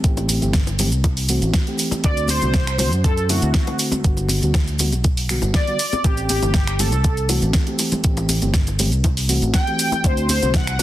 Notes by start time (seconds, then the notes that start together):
0.04 A1 E3 A3 C4 G4, kick, closed hi-hat, maracas, shaker
0.17 closed hi-hat, high bongo, shaker
0.29 open hi-hat, high conga, maracas, shaker
0.41 G1 E3 A3 C4 G4, closed hi-hat, high conga, shaker, maracas
0.53 kick, snare, closed hi-hat, shaker, maracas
0.67 closed hi-hat, high bongo, shaker
0.78 E3 A3 C4 G4, open hi-hat, low conga, shaker, maracas
0.92 C2, closed hi-hat, maracas, shaker
1.04 kick, closed hi-hat, high bongo, shaker, maracas
1.17 open hi-hat, shaker
1.28 E3 A3 C4 F#4, open hi-hat, maracas, shaker
1.42 A1, closed hi-hat, maracas, shaker
1.54 kick, snare, closed hi-hat, high bongo, shaker, maracas
1.67 E3 A3 C4 G4, closed hi-hat
1.78 open hi-hat, maracas, shaker
1.91 closed hi-hat, high bongo, high conga, maracas, shaker
2.04 D2 D3 A3 C4 F#4 D5, kick, closed hi-hat, shaker, maracas
2.17 closed hi-hat, shaker
2.28 C5, open hi-hat, high conga, maracas, shaker
2.41 C2 D3 A3 C4 F#4, closed hi-hat, high bongo, high conga, maracas, shaker
2.54 kick, snare, closed hi-hat, maracas, shaker
2.67 finger snap, closed hi-hat, shaker
2.78 D3 A3 C4 F#4 C5, open hi-hat, high bongo, low conga, maracas, shaker
2.92 F#2, closed hi-hat, maracas, shaker
3.04 A4, kick, closed hi-hat, maracas, shaker
3.17 closed hi-hat, shaker
3.29 D3 A3 C4 E4 F#4, open hi-hat, high bongo, maracas, shaker
3.42 D2, closed hi-hat, maracas, shaker
3.54 kick, snare, closed hi-hat, maracas, shaker
3.67 D3 A3 C4 F#4, closed hi-hat, high bongo
3.79 open hi-hat, maracas, shaker
3.92 closed hi-hat, high conga, low conga, maracas, shaker
4.04 G1 D3 G3 B3 F#4, kick, closed hi-hat, maracas, shaker
4.17 closed hi-hat, high bongo, shaker
4.29 open hi-hat, high conga, maracas, shaker
4.42 D2 D3 G3 B3 F#4, closed hi-hat, high conga, maracas, shaker
4.54 kick, snare, closed hi-hat, high bongo, maracas, shaker
4.68 closed hi-hat, shaker
4.79 D3 G3 B3 F#4, open hi-hat, low conga, maracas, shaker
4.92 B1, closed hi-hat, high conga, maracas, shaker
5.04 kick, closed hi-hat, high bongo, maracas, shaker
5.17 open hi-hat, shaker
5.29 D3 G3 B3 F#4, finger snap, open hi-hat, maracas, shaker
5.42 G1, closed hi-hat, high bongo, shaker, maracas
5.54 D5, kick, snare, closed hi-hat, maracas, shaker
5.67 D3 G3 B3 F#4, closed hi-hat
5.79 open hi-hat, maracas, shaker
5.93 closed hi-hat, high bongo, high conga, shaker, maracas
6.04 A1 E3 A3 C4 G4, kick, closed hi-hat, high bongo, shaker, maracas
6.17 closed hi-hat, shaker
6.29 G4, open hi-hat, high conga, shaker, maracas
6.42 G1 E3 A3 C4 G4, closed hi-hat, high bongo, high conga, shaker, maracas
6.54 G4, kick, snare, closed hi-hat, shaker, maracas
6.67 finger snap, closed hi-hat, shaker
6.79 E3 A3 C4 G4 A4, open hi-hat, low conga, shaker, maracas
6.92 C2, closed hi-hat, high bongo, shaker, maracas
7.04 kick, closed hi-hat, shaker, maracas
7.17 closed hi-hat, shaker
7.29 E3 A3 C4 F#4, open hi-hat, high bongo, shaker, maracas
7.42 A1, closed hi-hat, shaker, maracas
7.53 kick, snare, closed hi-hat, maracas, shaker
7.67 E3 A3 C4 G4, closed hi-hat
7.78 open hi-hat, high bongo, maracas, shaker
7.91 closed hi-hat, high conga, low conga, maracas, shaker
8.04 A1 E3 A3 C4 G4, kick, closed hi-hat, shaker, maracas
8.17 closed hi-hat, high bongo, shaker
8.29 open hi-hat, high conga, shaker, maracas
8.42 G1 E3 A3 C4 G4, closed hi-hat, high conga, shaker, maracas
8.54 kick, snare, closed hi-hat, maracas, shaker
8.67 closed hi-hat, high bongo, shaker
8.79 E3 A3 C4 G4, open hi-hat, low conga, shaker, maracas
8.92 C2, closed hi-hat, shaker, maracas
9.04 kick, closed hi-hat, high bongo, shaker, maracas
9.17 open hi-hat, shaker
9.28 E3 A3 C4 F#4, open hi-hat, shaker, maracas
9.42 A1, closed hi-hat, shaker, maracas
9.54 G5, kick, snare, closed hi-hat, high bongo, shaker, maracas
9.67 E3 A3 C4 G4, closed hi-hat
9.79 open hi-hat, shaker, maracas
9.92 closed hi-hat, high bongo, high conga, shaker, maracas
10.03 D2 D3 A3 C4 F#4 C5, kick, closed hi-hat, shaker, maracas
10.17 closed hi-hat, shaker
10.29 C5, open hi-hat, high conga, maracas, shaker
10.41 C2 D3 A3 C4 F#4, closed hi-hat, high bongo, high conga, shaker, maracas
10.54 F#5, kick, snare, closed hi-hat, maracas, shaker
10.67 finger snap, closed hi-hat, shaker
10.79 D3 A3 C4 F#4, open hi-hat, high bongo, low conga, shaker, maracas